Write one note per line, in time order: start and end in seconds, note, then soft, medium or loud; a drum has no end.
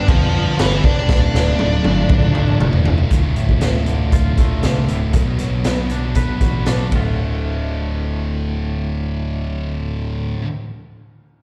0.00 1.05 B4 medium
0.00 3.08 D5 medium
0.00 1.07 G5 medium
0.08 0.45 F2 medium
0.08 0.84 G2 loud
0.08 0.84 D3 loud
0.08 0.56 F3 loud
0.08 0.57 G3 loud
0.08 0.57 B3 loud
0.08 0.59 D4 loud
0.08 0.60 F4 loud
0.08 0.58 G4 loud
0.08 kick loud
0.08 crash medium
0.58 0.77 G1 loud
0.58 0.83 E3 medium
0.58 0.84 G3 medium
0.58 0.84 B3 medium
0.58 0.84 D4 medium
0.58 0.83 E4 loud
0.58 0.82 G4 medium
0.58 snare loud
0.58 crash medium
0.84 1.02 C#2 medium
0.84 1.09 G3 medium
0.84 1.08 B3 medium
0.84 4.34 D4 medium
0.84 2.57 D4 medium
0.84 1.08 G4 medium
0.84 2.57 D5 medium
0.84 kick medium
1.08 1.27 D1 medium
1.08 1.59 D2 loud
1.08 1.57 A2 loud
1.08 1.35 D3 medium
1.08 1.34 A3 loud
1.08 1.33 F4 loud
1.08 3.09 A4 medium
1.08 3.09 F5 medium
1.08 kick loud
1.08 snare medium
1.34 1.53 D1 loud
1.34 1.58 D3 medium
1.34 1.59 A3 medium
1.34 1.59 F4 medium
1.34 snare medium
1.58 1.78 D1 medium
1.58 2.09 A2 medium
1.58 1.85 D3 medium
1.58 1.84 A3 medium
1.58 1.83 F4 medium
1.58 high tom medium
1.84 2.03 G1 medium
1.84 2.10 D3 medium
1.84 2.10 A3 medium
1.84 2.11 F4 medium
1.84 high tom medium
2.09 2.46 D1 medium
2.09 2.86 D2 loud
2.09 2.59 A2 medium
2.09 2.60 D3 medium
2.09 2.60 A3 loud
2.09 2.60 F4 loud
2.09 kick loud
2.09 mid tom medium
2.22 mid tom medium
2.35 mid tom medium
2.48 mid tom medium
2.60 2.79 F1 loud
2.60 3.09 A2 medium
2.60 2.86 D3 medium
2.60 2.85 A3 medium
2.60 2.84 F4 loud
2.60 mid tom loud
2.73 floor tom medium
2.85 3.04 D1 medium
2.85 3.11 D3 medium
2.85 3.10 A3 medium
2.85 3.10 F4 medium
2.85 floor tom loud
2.98 floor tom medium
3.11 3.35 D1 medium
3.11 3.60 D2 medium
3.11 3.61 A2 medium
3.11 3.37 D3 medium
3.11 3.36 A3 medium
3.11 3.35 F4 loud
3.11 kick loud
3.11 closed hi-hat medium
3.36 3.60 D1 medium
3.36 3.61 A2 medium
3.36 3.61 D3 medium
3.36 3.62 A3 medium
3.36 3.62 F4 medium
3.36 closed hi-hat soft
3.49 kick medium
3.61 3.86 D1 medium
3.61 4.12 D2 medium
3.61 4.13 A2 medium
3.61 3.88 D3 loud
3.61 3.87 A3 loud
3.61 3.86 F4 loud
3.61 snare loud
3.61 closed hi-hat medium
3.86 4.11 D1 medium
3.86 4.39 D3 medium
3.86 4.38 A3 medium
3.86 4.37 F4 medium
3.86 closed hi-hat soft
4.12 4.61 D1 medium
4.12 5.14 F4 medium
4.12 kick loud
4.12 closed hi-hat medium
4.38 4.63 D3 medium
4.38 4.64 A3 medium
4.38 4.64 F4 medium
4.38 kick medium
4.38 closed hi-hat medium
4.63 4.88 C2 medium
4.63 5.13 A2 medium
4.63 5.13 D3 medium
4.63 5.13 A3 medium
4.63 5.14 F4 medium
4.63 snare loud
4.63 closed hi-hat medium
4.88 5.13 D1 medium
4.88 5.15 A2 medium
4.88 closed hi-hat medium
5.13 5.38 B1 medium
5.13 5.64 B2 medium
5.13 5.64 F#3 medium
5.13 5.40 B3 loud
5.13 5.40 D4 medium
5.13 5.39 F#4 medium
5.13 5.39 B4 loud
5.13 kick loud
5.13 closed hi-hat medium
5.39 5.64 B1 medium
5.39 6.67 F#3 medium
5.39 5.65 B3 medium
5.39 5.65 D4 medium
5.39 5.65 F#4 medium
5.39 5.65 B4 medium
5.39 closed hi-hat medium
5.64 6.14 B1 medium
5.64 6.16 B2 medium
5.64 6.16 F#3 medium
5.64 5.91 B3 medium
5.64 5.91 D4 medium
5.64 5.90 F#4 loud
5.64 5.90 B4 loud
5.64 snare loud
5.64 closed hi-hat medium
5.90 6.43 B3 medium
5.90 6.42 D4 medium
5.90 6.42 F#4 medium
5.90 6.41 B4 medium
5.90 closed hi-hat medium
6.15 6.40 B1 medium
6.15 6.92 B4 medium
6.15 kick loud
6.15 closed hi-hat medium
6.41 6.65 A1 medium
6.41 6.65 B3 medium
6.41 6.66 D4 medium
6.41 6.67 F#4 medium
6.41 6.67 B4 medium
6.41 kick medium
6.41 closed hi-hat medium
6.66 6.91 B1 medium
6.66 6.92 B3 medium
6.66 6.92 D4 medium
6.66 6.93 F#4 medium
6.66 6.93 B4 medium
6.66 snare loud
6.66 closed hi-hat medium
6.91 10.33 D1 medium
6.91 10.41 D2 medium
6.91 10.43 A2 medium
6.91 10.45 A3 medium
6.91 kick medium
6.91 ride medium
6.95 10.45 D3 medium
6.95 10.46 F4 medium